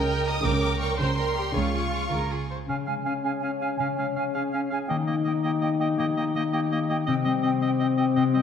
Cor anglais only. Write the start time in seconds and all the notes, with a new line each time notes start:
2.69 F5
2.86 F5
3.06 F5
3.25 F5
3.44 F5
3.62 F5
3.80 F5
3.99 F5
4.16 F5
4.34 F5
4.53 F5
4.70 F5
4.89 D#5
5.07 D#5
5.24 D#5
5.43 D#5
5.61 D#5
5.81 D#5
5.99 D#5
6.17 D#5
6.35 D#5
6.52 D#5
6.72 D#5
6.89 D#5
7.06 D#5
7.24 D#5
7.42 D#5
7.62 D#5
7.79 D#5
7.98 D#5
8.16 D#5
8.34 D#5